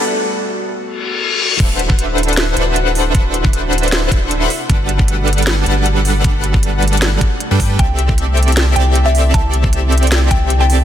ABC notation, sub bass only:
X:1
M:4/4
L:1/16
Q:"Swing 16ths" 1/4=155
K:G
V:1 name="Sub bass" clef=bass
z16 | D,,,8- D,,,2 D,,,6 | D,,,8- D,,,2 D,,,4 z2 | G,,,8- G,,,2 G,,,6 |
G,,,8- G,,,2 z3 G,,3 | C,,8- C,,2 C,,6 | C,,8- C,,2 C,,6 |]